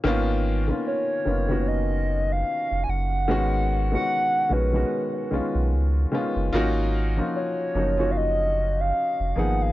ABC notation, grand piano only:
X:1
M:4/4
L:1/16
Q:"Swing 16ths" 1/4=74
K:Blyd
V:1 name="Grand piano"
[D,A,B,CE]2 z [D,A,B,CE]2 z [D,A,B,CE] [D,A,B,CF]4- [D,A,B,CF] z4 | [D,G,B,CF]2 z [D,G,B,CF]2 z [D,G,B,CF] [D,G,B,CF]2 z [D,G,B,CE]3 z [D,G,B,CE] z | [A,CDEF]2 z [E,A,CDE]2 z [E,A,CDF] [A,CDEF]4- [A,CDEF] z2 [E,A,B,DG]2 |]